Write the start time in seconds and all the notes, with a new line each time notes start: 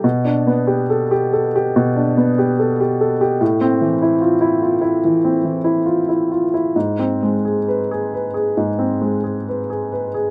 0.04 B2
0.25 D4
0.47 B3
0.67 G4
0.90 A4
1.11 G4
1.33 A4
1.56 G4
1.76 B2
1.96 D4
2.17 B3
2.38 G4
2.59 A4
2.80 G4
3.01 A4
3.21 G4
3.41 A2
3.61 C4
3.81 E3
4.02 E4
4.21 F4
4.41 E4
4.62 F4
4.81 E4
5.04 E3
5.25 C4
5.45 E3
5.64 E4
5.86 F4
6.09 E4
6.31 F4
6.54 E4
6.76 G#2
6.99 C4
7.23 G#3
7.45 G#4
7.68 B4
7.91 G#4
8.14 B4
8.34 G#4
8.57 G#2
8.79 C4
9.02 G#3
9.24 G#4
9.48 B4
9.70 G#4
9.92 B4
10.14 G#4